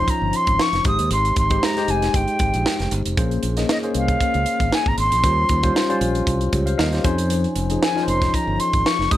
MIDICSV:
0, 0, Header, 1, 5, 480
1, 0, Start_track
1, 0, Tempo, 515907
1, 1033, Time_signature, 4, 2, 24, 8
1, 8533, End_track
2, 0, Start_track
2, 0, Title_t, "Flute"
2, 0, Program_c, 0, 73
2, 0, Note_on_c, 0, 84, 86
2, 90, Note_on_c, 0, 82, 82
2, 104, Note_off_c, 0, 84, 0
2, 333, Note_on_c, 0, 84, 88
2, 347, Note_off_c, 0, 82, 0
2, 572, Note_on_c, 0, 85, 103
2, 586, Note_off_c, 0, 84, 0
2, 802, Note_off_c, 0, 85, 0
2, 811, Note_on_c, 0, 87, 95
2, 1026, Note_off_c, 0, 87, 0
2, 1045, Note_on_c, 0, 84, 81
2, 1263, Note_off_c, 0, 84, 0
2, 1288, Note_on_c, 0, 84, 81
2, 1528, Note_on_c, 0, 82, 82
2, 1542, Note_off_c, 0, 84, 0
2, 1768, Note_on_c, 0, 80, 75
2, 1782, Note_off_c, 0, 82, 0
2, 2007, Note_on_c, 0, 79, 75
2, 2021, Note_off_c, 0, 80, 0
2, 2720, Note_off_c, 0, 79, 0
2, 3455, Note_on_c, 0, 75, 70
2, 3511, Note_off_c, 0, 75, 0
2, 3697, Note_on_c, 0, 77, 82
2, 4413, Note_on_c, 0, 80, 86
2, 4427, Note_off_c, 0, 77, 0
2, 4537, Note_on_c, 0, 82, 92
2, 4551, Note_off_c, 0, 80, 0
2, 4637, Note_off_c, 0, 82, 0
2, 4643, Note_on_c, 0, 84, 90
2, 5561, Note_off_c, 0, 84, 0
2, 7287, Note_on_c, 0, 80, 82
2, 7505, Note_off_c, 0, 80, 0
2, 7517, Note_on_c, 0, 84, 79
2, 7762, Note_on_c, 0, 82, 80
2, 7776, Note_off_c, 0, 84, 0
2, 7999, Note_on_c, 0, 84, 89
2, 8013, Note_off_c, 0, 82, 0
2, 8243, Note_on_c, 0, 85, 95
2, 8257, Note_off_c, 0, 84, 0
2, 8477, Note_on_c, 0, 87, 94
2, 8491, Note_off_c, 0, 85, 0
2, 8533, Note_off_c, 0, 87, 0
2, 8533, End_track
3, 0, Start_track
3, 0, Title_t, "Tine electric piano"
3, 0, Program_c, 1, 4
3, 0, Control_c, 1, 64, 127
3, 0, Note_on_c, 1, 53, 64
3, 0, Note_on_c, 1, 61, 65
3, 0, Note_on_c, 1, 63, 62
3, 0, Note_on_c, 1, 72, 81
3, 375, Note_off_c, 1, 53, 0
3, 378, Note_off_c, 1, 61, 0
3, 381, Note_off_c, 1, 63, 0
3, 382, Note_off_c, 1, 72, 0
3, 790, Note_on_c, 1, 56, 64
3, 795, Note_on_c, 1, 63, 59
3, 798, Note_on_c, 1, 67, 61
3, 801, Note_on_c, 1, 72, 68
3, 808, Control_c, 1, 64, 0
3, 941, Control_c, 1, 64, 127
3, 1271, Note_off_c, 1, 56, 0
3, 1274, Note_off_c, 1, 63, 0
3, 1275, Note_off_c, 1, 67, 0
3, 1277, Note_off_c, 1, 72, 0
3, 1395, Note_on_c, 1, 56, 65
3, 1400, Note_on_c, 1, 63, 55
3, 1405, Note_on_c, 1, 67, 60
3, 1409, Note_on_c, 1, 72, 63
3, 1557, Note_off_c, 1, 56, 0
3, 1560, Note_off_c, 1, 63, 0
3, 1562, Note_off_c, 1, 67, 0
3, 1564, Note_off_c, 1, 72, 0
3, 1642, Note_on_c, 1, 56, 67
3, 1646, Note_on_c, 1, 63, 60
3, 1650, Note_on_c, 1, 67, 66
3, 1653, Note_on_c, 1, 72, 78
3, 2296, Note_off_c, 1, 56, 0
3, 2298, Note_off_c, 1, 63, 0
3, 2300, Note_off_c, 1, 67, 0
3, 2301, Note_off_c, 1, 72, 0
3, 2950, Note_on_c, 1, 58, 70
3, 2952, Note_on_c, 1, 61, 67
3, 2958, Note_on_c, 1, 68, 66
3, 2961, Note_on_c, 1, 72, 74
3, 2964, Control_c, 1, 64, 0
3, 3140, Control_c, 1, 64, 127
3, 3199, Note_off_c, 1, 58, 0
3, 3200, Note_off_c, 1, 61, 0
3, 3203, Note_off_c, 1, 68, 0
3, 3204, Note_off_c, 1, 72, 0
3, 3315, Note_on_c, 1, 58, 58
3, 3320, Note_on_c, 1, 61, 56
3, 3325, Note_on_c, 1, 68, 53
3, 3328, Note_on_c, 1, 75, 67
3, 3477, Note_off_c, 1, 58, 0
3, 3480, Note_off_c, 1, 61, 0
3, 3483, Note_off_c, 1, 68, 0
3, 3484, Note_off_c, 1, 75, 0
3, 3561, Note_on_c, 1, 58, 63
3, 3566, Note_on_c, 1, 61, 62
3, 3568, Note_on_c, 1, 68, 62
3, 3571, Note_on_c, 1, 72, 71
3, 4216, Note_off_c, 1, 58, 0
3, 4218, Note_off_c, 1, 61, 0
3, 4219, Note_off_c, 1, 68, 0
3, 4221, Note_off_c, 1, 72, 0
3, 4865, Note_on_c, 1, 55, 59
3, 4869, Note_on_c, 1, 61, 61
3, 4874, Note_on_c, 1, 65, 57
3, 4878, Note_on_c, 1, 72, 67
3, 4886, Control_c, 1, 64, 0
3, 5069, Control_c, 1, 64, 127
3, 5117, Note_off_c, 1, 55, 0
3, 5119, Note_off_c, 1, 61, 0
3, 5121, Note_off_c, 1, 65, 0
3, 5123, Note_off_c, 1, 72, 0
3, 5235, Note_on_c, 1, 55, 73
3, 5241, Note_on_c, 1, 61, 67
3, 5245, Note_on_c, 1, 65, 70
3, 5245, Note_on_c, 1, 72, 83
3, 5398, Note_off_c, 1, 55, 0
3, 5401, Note_off_c, 1, 61, 0
3, 5403, Note_off_c, 1, 65, 0
3, 5403, Note_off_c, 1, 72, 0
3, 5477, Note_on_c, 1, 55, 80
3, 5482, Note_on_c, 1, 61, 78
3, 5486, Note_on_c, 1, 65, 76
3, 5492, Note_on_c, 1, 72, 83
3, 6074, Note_on_c, 1, 73, 55
3, 6078, Note_off_c, 1, 72, 0
3, 6080, Note_on_c, 1, 67, 48
3, 6134, Note_off_c, 1, 55, 0
3, 6137, Note_off_c, 1, 61, 0
3, 6139, Note_off_c, 1, 65, 0
3, 6196, Note_on_c, 1, 77, 63
3, 6197, Note_off_c, 1, 73, 0
3, 6200, Note_off_c, 1, 67, 0
3, 6204, Note_on_c, 1, 72, 53
3, 6294, Note_off_c, 1, 77, 0
3, 6305, Note_on_c, 1, 75, 70
3, 6305, Note_on_c, 1, 77, 67
3, 6309, Note_off_c, 1, 72, 0
3, 6312, Note_on_c, 1, 70, 59
3, 6433, Note_off_c, 1, 75, 0
3, 6436, Note_off_c, 1, 70, 0
3, 6443, Note_on_c, 1, 72, 59
3, 6445, Note_on_c, 1, 67, 53
3, 6533, Note_off_c, 1, 77, 0
3, 6545, Note_off_c, 1, 72, 0
3, 6546, Note_on_c, 1, 53, 77
3, 6550, Note_on_c, 1, 61, 72
3, 6553, Note_on_c, 1, 80, 65
3, 6555, Note_on_c, 1, 63, 71
3, 6556, Note_on_c, 1, 72, 87
3, 6567, Control_c, 1, 64, 0
3, 6672, Note_off_c, 1, 67, 0
3, 6756, Control_c, 1, 64, 127
3, 6777, Note_off_c, 1, 80, 0
3, 7030, Note_off_c, 1, 53, 0
3, 7032, Note_off_c, 1, 61, 0
3, 7035, Note_off_c, 1, 63, 0
3, 7035, Note_off_c, 1, 72, 0
3, 7163, Note_on_c, 1, 53, 62
3, 7165, Note_on_c, 1, 61, 58
3, 7170, Note_on_c, 1, 63, 61
3, 7176, Note_on_c, 1, 68, 71
3, 7323, Note_off_c, 1, 53, 0
3, 7323, Note_off_c, 1, 61, 0
3, 7326, Note_off_c, 1, 63, 0
3, 7329, Note_off_c, 1, 68, 0
3, 7402, Note_on_c, 1, 53, 74
3, 7407, Note_on_c, 1, 61, 67
3, 7407, Note_on_c, 1, 63, 67
3, 7414, Note_on_c, 1, 70, 60
3, 7462, Note_off_c, 1, 70, 0
3, 7472, Note_on_c, 1, 72, 79
3, 8058, Note_off_c, 1, 53, 0
3, 8060, Note_off_c, 1, 61, 0
3, 8060, Note_off_c, 1, 63, 0
3, 8093, Note_off_c, 1, 72, 0
3, 8472, Note_on_c, 1, 56, 65
3, 8472, Note_on_c, 1, 63, 55
3, 8480, Note_on_c, 1, 67, 61
3, 8481, Note_on_c, 1, 72, 67
3, 8486, Control_c, 1, 64, 0
3, 8533, Note_off_c, 1, 56, 0
3, 8533, Note_off_c, 1, 63, 0
3, 8533, Note_off_c, 1, 67, 0
3, 8533, Note_off_c, 1, 72, 0
3, 8533, End_track
4, 0, Start_track
4, 0, Title_t, "Fingered electric bass"
4, 0, Program_c, 2, 33
4, 200, Note_on_c, 2, 31, 72
4, 289, Note_off_c, 2, 31, 0
4, 440, Note_on_c, 2, 32, 78
4, 528, Note_off_c, 2, 32, 0
4, 677, Note_on_c, 2, 29, 72
4, 766, Note_off_c, 2, 29, 0
4, 789, Note_on_c, 2, 32, 81
4, 893, Note_off_c, 2, 32, 0
4, 922, Note_on_c, 2, 39, 76
4, 1010, Note_off_c, 2, 39, 0
4, 1029, Note_on_c, 2, 32, 96
4, 1220, Note_off_c, 2, 32, 0
4, 1271, Note_on_c, 2, 32, 81
4, 1461, Note_off_c, 2, 32, 0
4, 1750, Note_on_c, 2, 29, 76
4, 1941, Note_off_c, 2, 29, 0
4, 1990, Note_on_c, 2, 31, 88
4, 2094, Note_off_c, 2, 31, 0
4, 2233, Note_on_c, 2, 32, 84
4, 2335, Note_off_c, 2, 32, 0
4, 2369, Note_on_c, 2, 34, 77
4, 2453, Note_off_c, 2, 34, 0
4, 2605, Note_on_c, 2, 29, 76
4, 2691, Note_off_c, 2, 29, 0
4, 2715, Note_on_c, 2, 31, 82
4, 2817, Note_off_c, 2, 31, 0
4, 2845, Note_on_c, 2, 29, 66
4, 2931, Note_off_c, 2, 29, 0
4, 2953, Note_on_c, 2, 34, 89
4, 3142, Note_off_c, 2, 34, 0
4, 3193, Note_on_c, 2, 34, 78
4, 3382, Note_off_c, 2, 34, 0
4, 3675, Note_on_c, 2, 36, 73
4, 3863, Note_off_c, 2, 36, 0
4, 4046, Note_on_c, 2, 37, 73
4, 4132, Note_off_c, 2, 37, 0
4, 4283, Note_on_c, 2, 32, 73
4, 4370, Note_off_c, 2, 32, 0
4, 4522, Note_on_c, 2, 32, 75
4, 4610, Note_off_c, 2, 32, 0
4, 4630, Note_on_c, 2, 32, 76
4, 4734, Note_off_c, 2, 32, 0
4, 4766, Note_on_c, 2, 34, 72
4, 4852, Note_off_c, 2, 34, 0
4, 4873, Note_on_c, 2, 39, 84
4, 5063, Note_off_c, 2, 39, 0
4, 5112, Note_on_c, 2, 39, 83
4, 5302, Note_off_c, 2, 39, 0
4, 5593, Note_on_c, 2, 34, 77
4, 5783, Note_off_c, 2, 34, 0
4, 5833, Note_on_c, 2, 36, 83
4, 6023, Note_off_c, 2, 36, 0
4, 6076, Note_on_c, 2, 37, 81
4, 6265, Note_off_c, 2, 37, 0
4, 6315, Note_on_c, 2, 39, 89
4, 6505, Note_off_c, 2, 39, 0
4, 6554, Note_on_c, 2, 41, 94
4, 6934, Note_off_c, 2, 41, 0
4, 7033, Note_on_c, 2, 29, 78
4, 7223, Note_off_c, 2, 29, 0
4, 7514, Note_on_c, 2, 29, 75
4, 7704, Note_off_c, 2, 29, 0
4, 7884, Note_on_c, 2, 31, 71
4, 7971, Note_off_c, 2, 31, 0
4, 8126, Note_on_c, 2, 32, 74
4, 8213, Note_off_c, 2, 32, 0
4, 8363, Note_on_c, 2, 29, 73
4, 8451, Note_off_c, 2, 29, 0
4, 8480, Note_on_c, 2, 32, 92
4, 8533, Note_off_c, 2, 32, 0
4, 8533, End_track
5, 0, Start_track
5, 0, Title_t, "Drums"
5, 72, Note_on_c, 9, 36, 78
5, 75, Note_on_c, 9, 42, 76
5, 165, Note_off_c, 9, 36, 0
5, 168, Note_off_c, 9, 42, 0
5, 307, Note_on_c, 9, 42, 60
5, 400, Note_off_c, 9, 42, 0
5, 437, Note_on_c, 9, 42, 43
5, 439, Note_on_c, 9, 36, 66
5, 530, Note_off_c, 9, 42, 0
5, 532, Note_off_c, 9, 36, 0
5, 553, Note_on_c, 9, 38, 88
5, 646, Note_off_c, 9, 38, 0
5, 677, Note_on_c, 9, 42, 31
5, 688, Note_on_c, 9, 38, 33
5, 770, Note_off_c, 9, 42, 0
5, 781, Note_off_c, 9, 38, 0
5, 786, Note_on_c, 9, 42, 64
5, 790, Note_on_c, 9, 36, 97
5, 880, Note_off_c, 9, 42, 0
5, 883, Note_off_c, 9, 36, 0
5, 919, Note_on_c, 9, 42, 53
5, 1012, Note_off_c, 9, 42, 0
5, 1030, Note_on_c, 9, 42, 79
5, 1123, Note_off_c, 9, 42, 0
5, 1163, Note_on_c, 9, 42, 33
5, 1256, Note_off_c, 9, 42, 0
5, 1268, Note_on_c, 9, 42, 60
5, 1271, Note_on_c, 9, 36, 77
5, 1361, Note_off_c, 9, 42, 0
5, 1364, Note_off_c, 9, 36, 0
5, 1399, Note_on_c, 9, 42, 42
5, 1402, Note_on_c, 9, 36, 82
5, 1492, Note_off_c, 9, 42, 0
5, 1496, Note_off_c, 9, 36, 0
5, 1516, Note_on_c, 9, 38, 98
5, 1609, Note_off_c, 9, 38, 0
5, 1644, Note_on_c, 9, 42, 33
5, 1645, Note_on_c, 9, 38, 31
5, 1737, Note_off_c, 9, 42, 0
5, 1738, Note_off_c, 9, 38, 0
5, 1751, Note_on_c, 9, 42, 68
5, 1844, Note_off_c, 9, 42, 0
5, 1883, Note_on_c, 9, 42, 42
5, 1887, Note_on_c, 9, 38, 32
5, 1976, Note_off_c, 9, 42, 0
5, 1980, Note_off_c, 9, 38, 0
5, 1992, Note_on_c, 9, 36, 76
5, 1994, Note_on_c, 9, 42, 76
5, 2085, Note_off_c, 9, 36, 0
5, 2087, Note_off_c, 9, 42, 0
5, 2117, Note_on_c, 9, 42, 28
5, 2210, Note_off_c, 9, 42, 0
5, 2225, Note_on_c, 9, 42, 57
5, 2232, Note_on_c, 9, 36, 84
5, 2318, Note_off_c, 9, 42, 0
5, 2325, Note_off_c, 9, 36, 0
5, 2359, Note_on_c, 9, 42, 43
5, 2453, Note_off_c, 9, 42, 0
5, 2474, Note_on_c, 9, 38, 90
5, 2567, Note_off_c, 9, 38, 0
5, 2600, Note_on_c, 9, 42, 28
5, 2611, Note_on_c, 9, 38, 32
5, 2693, Note_off_c, 9, 42, 0
5, 2704, Note_off_c, 9, 38, 0
5, 2711, Note_on_c, 9, 42, 66
5, 2804, Note_off_c, 9, 42, 0
5, 2843, Note_on_c, 9, 42, 55
5, 2936, Note_off_c, 9, 42, 0
5, 2953, Note_on_c, 9, 36, 90
5, 2954, Note_on_c, 9, 42, 76
5, 3046, Note_off_c, 9, 36, 0
5, 3047, Note_off_c, 9, 42, 0
5, 3082, Note_on_c, 9, 42, 31
5, 3175, Note_off_c, 9, 42, 0
5, 3188, Note_on_c, 9, 42, 60
5, 3281, Note_off_c, 9, 42, 0
5, 3319, Note_on_c, 9, 42, 41
5, 3329, Note_on_c, 9, 38, 30
5, 3412, Note_off_c, 9, 42, 0
5, 3422, Note_off_c, 9, 38, 0
5, 3435, Note_on_c, 9, 38, 100
5, 3528, Note_off_c, 9, 38, 0
5, 3566, Note_on_c, 9, 42, 29
5, 3659, Note_off_c, 9, 42, 0
5, 3670, Note_on_c, 9, 42, 64
5, 3763, Note_off_c, 9, 42, 0
5, 3800, Note_on_c, 9, 36, 81
5, 3800, Note_on_c, 9, 42, 41
5, 3893, Note_off_c, 9, 36, 0
5, 3893, Note_off_c, 9, 42, 0
5, 3912, Note_on_c, 9, 36, 80
5, 3916, Note_on_c, 9, 42, 74
5, 4005, Note_off_c, 9, 36, 0
5, 4009, Note_off_c, 9, 42, 0
5, 4039, Note_on_c, 9, 42, 30
5, 4132, Note_off_c, 9, 42, 0
5, 4148, Note_on_c, 9, 42, 61
5, 4241, Note_off_c, 9, 42, 0
5, 4280, Note_on_c, 9, 36, 68
5, 4280, Note_on_c, 9, 42, 44
5, 4373, Note_off_c, 9, 42, 0
5, 4374, Note_off_c, 9, 36, 0
5, 4396, Note_on_c, 9, 38, 92
5, 4489, Note_off_c, 9, 38, 0
5, 4522, Note_on_c, 9, 36, 83
5, 4615, Note_off_c, 9, 36, 0
5, 4630, Note_on_c, 9, 42, 63
5, 4723, Note_off_c, 9, 42, 0
5, 4762, Note_on_c, 9, 42, 51
5, 4855, Note_off_c, 9, 42, 0
5, 4872, Note_on_c, 9, 36, 94
5, 4872, Note_on_c, 9, 42, 80
5, 4965, Note_off_c, 9, 36, 0
5, 4965, Note_off_c, 9, 42, 0
5, 5107, Note_on_c, 9, 42, 62
5, 5112, Note_on_c, 9, 36, 72
5, 5200, Note_off_c, 9, 42, 0
5, 5205, Note_off_c, 9, 36, 0
5, 5239, Note_on_c, 9, 42, 44
5, 5243, Note_on_c, 9, 36, 86
5, 5332, Note_off_c, 9, 42, 0
5, 5336, Note_off_c, 9, 36, 0
5, 5361, Note_on_c, 9, 38, 93
5, 5454, Note_off_c, 9, 38, 0
5, 5488, Note_on_c, 9, 42, 34
5, 5581, Note_off_c, 9, 42, 0
5, 5593, Note_on_c, 9, 42, 68
5, 5687, Note_off_c, 9, 42, 0
5, 5723, Note_on_c, 9, 42, 38
5, 5816, Note_off_c, 9, 42, 0
5, 5833, Note_on_c, 9, 36, 77
5, 5837, Note_on_c, 9, 42, 77
5, 5926, Note_off_c, 9, 36, 0
5, 5930, Note_off_c, 9, 42, 0
5, 5962, Note_on_c, 9, 42, 29
5, 6055, Note_off_c, 9, 42, 0
5, 6072, Note_on_c, 9, 42, 62
5, 6074, Note_on_c, 9, 36, 85
5, 6165, Note_off_c, 9, 42, 0
5, 6167, Note_off_c, 9, 36, 0
5, 6204, Note_on_c, 9, 42, 44
5, 6297, Note_off_c, 9, 42, 0
5, 6318, Note_on_c, 9, 38, 88
5, 6411, Note_off_c, 9, 38, 0
5, 6442, Note_on_c, 9, 42, 30
5, 6454, Note_on_c, 9, 38, 30
5, 6536, Note_off_c, 9, 42, 0
5, 6547, Note_off_c, 9, 38, 0
5, 6554, Note_on_c, 9, 42, 68
5, 6555, Note_on_c, 9, 36, 89
5, 6647, Note_off_c, 9, 42, 0
5, 6648, Note_off_c, 9, 36, 0
5, 6684, Note_on_c, 9, 42, 55
5, 6777, Note_off_c, 9, 42, 0
5, 6792, Note_on_c, 9, 42, 83
5, 6885, Note_off_c, 9, 42, 0
5, 6924, Note_on_c, 9, 42, 32
5, 7017, Note_off_c, 9, 42, 0
5, 7030, Note_on_c, 9, 42, 60
5, 7123, Note_off_c, 9, 42, 0
5, 7162, Note_on_c, 9, 42, 41
5, 7255, Note_off_c, 9, 42, 0
5, 7281, Note_on_c, 9, 38, 107
5, 7374, Note_off_c, 9, 38, 0
5, 7412, Note_on_c, 9, 38, 34
5, 7505, Note_off_c, 9, 38, 0
5, 7518, Note_on_c, 9, 42, 62
5, 7611, Note_off_c, 9, 42, 0
5, 7645, Note_on_c, 9, 36, 81
5, 7648, Note_on_c, 9, 42, 39
5, 7652, Note_on_c, 9, 38, 29
5, 7738, Note_off_c, 9, 36, 0
5, 7741, Note_off_c, 9, 42, 0
5, 7745, Note_off_c, 9, 38, 0
5, 7758, Note_on_c, 9, 36, 72
5, 7762, Note_on_c, 9, 42, 72
5, 7851, Note_off_c, 9, 36, 0
5, 7855, Note_off_c, 9, 42, 0
5, 7999, Note_on_c, 9, 42, 61
5, 8092, Note_off_c, 9, 42, 0
5, 8126, Note_on_c, 9, 42, 43
5, 8127, Note_on_c, 9, 36, 73
5, 8219, Note_off_c, 9, 42, 0
5, 8220, Note_off_c, 9, 36, 0
5, 8244, Note_on_c, 9, 38, 93
5, 8337, Note_off_c, 9, 38, 0
5, 8382, Note_on_c, 9, 38, 33
5, 8475, Note_off_c, 9, 38, 0
5, 8479, Note_on_c, 9, 36, 97
5, 8479, Note_on_c, 9, 42, 64
5, 8533, Note_off_c, 9, 36, 0
5, 8533, Note_off_c, 9, 42, 0
5, 8533, End_track
0, 0, End_of_file